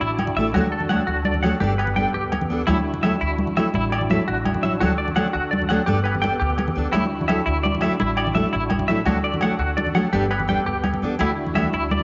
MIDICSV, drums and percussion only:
0, 0, Header, 1, 2, 480
1, 0, Start_track
1, 0, Key_signature, 2, "major"
1, 0, Tempo, 355450
1, 729, Time_signature, 12, 3, 24, 8
1, 16245, End_track
2, 0, Start_track
2, 0, Title_t, "Drums"
2, 16, Note_on_c, 9, 64, 30
2, 135, Note_off_c, 9, 64, 0
2, 135, Note_on_c, 9, 64, 31
2, 252, Note_on_c, 9, 63, 91
2, 257, Note_on_c, 9, 68, 64
2, 270, Note_off_c, 9, 64, 0
2, 367, Note_on_c, 9, 64, 68
2, 387, Note_off_c, 9, 63, 0
2, 392, Note_off_c, 9, 68, 0
2, 502, Note_off_c, 9, 64, 0
2, 611, Note_on_c, 9, 64, 28
2, 730, Note_on_c, 9, 63, 85
2, 736, Note_on_c, 9, 68, 59
2, 746, Note_off_c, 9, 64, 0
2, 865, Note_off_c, 9, 63, 0
2, 871, Note_off_c, 9, 68, 0
2, 963, Note_on_c, 9, 64, 25
2, 1085, Note_off_c, 9, 64, 0
2, 1085, Note_on_c, 9, 64, 66
2, 1207, Note_on_c, 9, 63, 80
2, 1219, Note_on_c, 9, 68, 70
2, 1220, Note_off_c, 9, 64, 0
2, 1342, Note_off_c, 9, 63, 0
2, 1354, Note_off_c, 9, 68, 0
2, 1686, Note_on_c, 9, 63, 88
2, 1810, Note_on_c, 9, 64, 65
2, 1821, Note_off_c, 9, 63, 0
2, 1932, Note_off_c, 9, 64, 0
2, 1932, Note_on_c, 9, 64, 29
2, 1938, Note_on_c, 9, 68, 63
2, 2067, Note_off_c, 9, 64, 0
2, 2073, Note_off_c, 9, 68, 0
2, 2165, Note_on_c, 9, 63, 96
2, 2300, Note_off_c, 9, 63, 0
2, 2419, Note_on_c, 9, 68, 67
2, 2525, Note_on_c, 9, 64, 54
2, 2554, Note_off_c, 9, 68, 0
2, 2647, Note_on_c, 9, 63, 81
2, 2660, Note_off_c, 9, 64, 0
2, 2768, Note_on_c, 9, 64, 27
2, 2783, Note_off_c, 9, 63, 0
2, 2893, Note_off_c, 9, 64, 0
2, 2893, Note_on_c, 9, 64, 28
2, 3022, Note_off_c, 9, 64, 0
2, 3022, Note_on_c, 9, 64, 29
2, 3131, Note_on_c, 9, 68, 66
2, 3138, Note_on_c, 9, 63, 91
2, 3157, Note_off_c, 9, 64, 0
2, 3258, Note_on_c, 9, 64, 75
2, 3266, Note_off_c, 9, 68, 0
2, 3274, Note_off_c, 9, 63, 0
2, 3393, Note_off_c, 9, 64, 0
2, 3498, Note_on_c, 9, 64, 32
2, 3609, Note_on_c, 9, 63, 84
2, 3616, Note_on_c, 9, 68, 66
2, 3633, Note_off_c, 9, 64, 0
2, 3744, Note_off_c, 9, 63, 0
2, 3751, Note_off_c, 9, 68, 0
2, 3854, Note_on_c, 9, 64, 24
2, 3966, Note_off_c, 9, 64, 0
2, 3966, Note_on_c, 9, 64, 63
2, 4088, Note_on_c, 9, 63, 78
2, 4099, Note_on_c, 9, 68, 73
2, 4101, Note_off_c, 9, 64, 0
2, 4224, Note_off_c, 9, 63, 0
2, 4234, Note_off_c, 9, 68, 0
2, 4571, Note_on_c, 9, 63, 84
2, 4689, Note_on_c, 9, 64, 62
2, 4706, Note_off_c, 9, 63, 0
2, 4817, Note_off_c, 9, 64, 0
2, 4817, Note_on_c, 9, 64, 28
2, 4820, Note_on_c, 9, 68, 63
2, 4952, Note_off_c, 9, 64, 0
2, 4955, Note_off_c, 9, 68, 0
2, 5050, Note_on_c, 9, 63, 95
2, 5185, Note_off_c, 9, 63, 0
2, 5297, Note_on_c, 9, 68, 70
2, 5417, Note_on_c, 9, 64, 61
2, 5432, Note_off_c, 9, 68, 0
2, 5536, Note_on_c, 9, 63, 90
2, 5552, Note_off_c, 9, 64, 0
2, 5671, Note_off_c, 9, 63, 0
2, 5779, Note_on_c, 9, 64, 28
2, 5908, Note_off_c, 9, 64, 0
2, 5908, Note_on_c, 9, 64, 27
2, 6015, Note_on_c, 9, 68, 66
2, 6017, Note_on_c, 9, 63, 98
2, 6043, Note_off_c, 9, 64, 0
2, 6136, Note_on_c, 9, 64, 79
2, 6150, Note_off_c, 9, 68, 0
2, 6152, Note_off_c, 9, 63, 0
2, 6271, Note_off_c, 9, 64, 0
2, 6388, Note_on_c, 9, 64, 30
2, 6500, Note_on_c, 9, 68, 62
2, 6501, Note_on_c, 9, 63, 82
2, 6523, Note_off_c, 9, 64, 0
2, 6635, Note_off_c, 9, 68, 0
2, 6636, Note_off_c, 9, 63, 0
2, 6859, Note_on_c, 9, 64, 67
2, 6972, Note_on_c, 9, 63, 86
2, 6975, Note_on_c, 9, 68, 68
2, 6994, Note_off_c, 9, 64, 0
2, 7101, Note_on_c, 9, 64, 28
2, 7107, Note_off_c, 9, 63, 0
2, 7110, Note_off_c, 9, 68, 0
2, 7236, Note_off_c, 9, 64, 0
2, 7466, Note_on_c, 9, 63, 92
2, 7583, Note_on_c, 9, 64, 74
2, 7601, Note_off_c, 9, 63, 0
2, 7697, Note_on_c, 9, 68, 64
2, 7718, Note_off_c, 9, 64, 0
2, 7832, Note_off_c, 9, 68, 0
2, 7942, Note_on_c, 9, 63, 94
2, 8074, Note_on_c, 9, 64, 29
2, 8077, Note_off_c, 9, 63, 0
2, 8173, Note_on_c, 9, 68, 62
2, 8209, Note_off_c, 9, 64, 0
2, 8302, Note_on_c, 9, 64, 67
2, 8308, Note_off_c, 9, 68, 0
2, 8425, Note_on_c, 9, 63, 89
2, 8437, Note_off_c, 9, 64, 0
2, 8560, Note_off_c, 9, 63, 0
2, 8667, Note_on_c, 9, 64, 28
2, 8779, Note_off_c, 9, 64, 0
2, 8779, Note_on_c, 9, 64, 28
2, 8883, Note_on_c, 9, 68, 57
2, 8894, Note_on_c, 9, 63, 91
2, 8914, Note_off_c, 9, 64, 0
2, 9018, Note_off_c, 9, 68, 0
2, 9018, Note_on_c, 9, 64, 76
2, 9029, Note_off_c, 9, 63, 0
2, 9153, Note_off_c, 9, 64, 0
2, 9255, Note_on_c, 9, 64, 28
2, 9351, Note_on_c, 9, 68, 60
2, 9378, Note_on_c, 9, 63, 81
2, 9390, Note_off_c, 9, 64, 0
2, 9486, Note_off_c, 9, 68, 0
2, 9513, Note_off_c, 9, 63, 0
2, 9609, Note_on_c, 9, 64, 26
2, 9737, Note_off_c, 9, 64, 0
2, 9737, Note_on_c, 9, 64, 69
2, 9841, Note_on_c, 9, 68, 80
2, 9850, Note_on_c, 9, 63, 81
2, 9872, Note_off_c, 9, 64, 0
2, 9976, Note_off_c, 9, 68, 0
2, 9985, Note_off_c, 9, 63, 0
2, 10334, Note_on_c, 9, 63, 90
2, 10459, Note_on_c, 9, 64, 68
2, 10469, Note_off_c, 9, 63, 0
2, 10543, Note_on_c, 9, 68, 65
2, 10575, Note_off_c, 9, 64, 0
2, 10575, Note_on_c, 9, 64, 32
2, 10678, Note_off_c, 9, 68, 0
2, 10710, Note_off_c, 9, 64, 0
2, 10800, Note_on_c, 9, 63, 97
2, 10935, Note_off_c, 9, 63, 0
2, 11030, Note_on_c, 9, 68, 73
2, 11165, Note_off_c, 9, 68, 0
2, 11166, Note_on_c, 9, 64, 72
2, 11278, Note_on_c, 9, 63, 98
2, 11301, Note_off_c, 9, 64, 0
2, 11394, Note_on_c, 9, 64, 34
2, 11413, Note_off_c, 9, 63, 0
2, 11515, Note_off_c, 9, 64, 0
2, 11515, Note_on_c, 9, 64, 28
2, 11637, Note_off_c, 9, 64, 0
2, 11637, Note_on_c, 9, 64, 33
2, 11744, Note_on_c, 9, 68, 71
2, 11756, Note_on_c, 9, 63, 107
2, 11772, Note_off_c, 9, 64, 0
2, 11874, Note_on_c, 9, 64, 86
2, 11879, Note_off_c, 9, 68, 0
2, 11891, Note_off_c, 9, 63, 0
2, 12009, Note_off_c, 9, 64, 0
2, 12119, Note_on_c, 9, 64, 35
2, 12227, Note_on_c, 9, 68, 65
2, 12239, Note_on_c, 9, 63, 93
2, 12254, Note_off_c, 9, 64, 0
2, 12363, Note_off_c, 9, 68, 0
2, 12374, Note_off_c, 9, 63, 0
2, 12483, Note_on_c, 9, 64, 30
2, 12608, Note_off_c, 9, 64, 0
2, 12608, Note_on_c, 9, 64, 72
2, 12704, Note_on_c, 9, 68, 77
2, 12729, Note_on_c, 9, 63, 88
2, 12743, Note_off_c, 9, 64, 0
2, 12839, Note_off_c, 9, 68, 0
2, 12864, Note_off_c, 9, 63, 0
2, 13203, Note_on_c, 9, 63, 92
2, 13320, Note_on_c, 9, 64, 69
2, 13338, Note_off_c, 9, 63, 0
2, 13434, Note_on_c, 9, 68, 57
2, 13445, Note_off_c, 9, 64, 0
2, 13445, Note_on_c, 9, 64, 27
2, 13569, Note_off_c, 9, 68, 0
2, 13580, Note_off_c, 9, 64, 0
2, 13683, Note_on_c, 9, 63, 97
2, 13818, Note_off_c, 9, 63, 0
2, 13920, Note_on_c, 9, 68, 70
2, 14039, Note_on_c, 9, 64, 62
2, 14055, Note_off_c, 9, 68, 0
2, 14163, Note_on_c, 9, 63, 90
2, 14174, Note_off_c, 9, 64, 0
2, 14284, Note_on_c, 9, 64, 30
2, 14298, Note_off_c, 9, 63, 0
2, 14398, Note_off_c, 9, 64, 0
2, 14398, Note_on_c, 9, 64, 23
2, 14533, Note_off_c, 9, 64, 0
2, 14632, Note_on_c, 9, 68, 66
2, 14634, Note_on_c, 9, 63, 85
2, 14767, Note_off_c, 9, 68, 0
2, 14768, Note_on_c, 9, 64, 67
2, 14769, Note_off_c, 9, 63, 0
2, 14903, Note_off_c, 9, 64, 0
2, 15112, Note_on_c, 9, 68, 62
2, 15133, Note_on_c, 9, 63, 77
2, 15247, Note_off_c, 9, 68, 0
2, 15268, Note_off_c, 9, 63, 0
2, 15366, Note_on_c, 9, 64, 26
2, 15482, Note_off_c, 9, 64, 0
2, 15482, Note_on_c, 9, 64, 61
2, 15596, Note_on_c, 9, 63, 79
2, 15604, Note_on_c, 9, 68, 72
2, 15617, Note_off_c, 9, 64, 0
2, 15731, Note_off_c, 9, 63, 0
2, 15739, Note_off_c, 9, 68, 0
2, 16086, Note_on_c, 9, 63, 85
2, 16203, Note_on_c, 9, 64, 61
2, 16221, Note_off_c, 9, 63, 0
2, 16245, Note_off_c, 9, 64, 0
2, 16245, End_track
0, 0, End_of_file